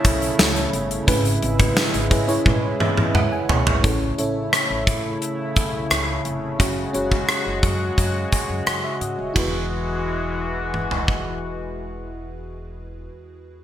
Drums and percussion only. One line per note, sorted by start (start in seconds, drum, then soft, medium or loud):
0.05 kick medium
0.05 closed hi-hat medium
0.22 closed hi-hat medium
0.39 snare loud
0.39 tambourine medium
0.56 closed hi-hat soft
0.73 closed hi-hat medium
0.91 closed hi-hat medium
1.08 kick loud
1.08 closed hi-hat medium
1.25 closed hi-hat medium
1.42 closed hi-hat medium
1.60 kick loud
1.60 closed hi-hat medium
1.77 snare loud
1.77 tambourine medium
1.94 closed hi-hat soft
2.11 kick loud
2.11 closed hi-hat medium
2.29 closed hi-hat soft
2.46 kick medium
2.46 high tom medium
2.80 mid tom medium
2.97 mid tom medium
3.15 mid tom medium
3.49 floor tom medium
3.67 floor tom loud
3.84 kick loud
3.84 closed hi-hat medium
4.18 closed hi-hat medium
4.53 cross-stick loud
4.53 closed hi-hat medium
4.87 kick medium
4.87 closed hi-hat medium
5.22 closed hi-hat medium
5.56 kick medium
5.56 closed hi-hat medium
5.91 cross-stick loud
5.91 closed hi-hat medium
6.25 closed hi-hat medium
6.60 kick medium
6.60 closed hi-hat medium
6.94 closed hi-hat medium
7.12 kick medium
7.29 cross-stick loud
7.29 closed hi-hat medium
7.63 kick medium
7.63 closed hi-hat medium
7.98 kick medium
7.98 closed hi-hat medium
8.32 kick medium
8.32 closed hi-hat medium
8.67 cross-stick loud
8.67 closed hi-hat medium
9.01 closed hi-hat medium
9.36 kick medium
9.36 ride medium
10.74 mid tom soft
10.91 floor tom medium
11.08 kick medium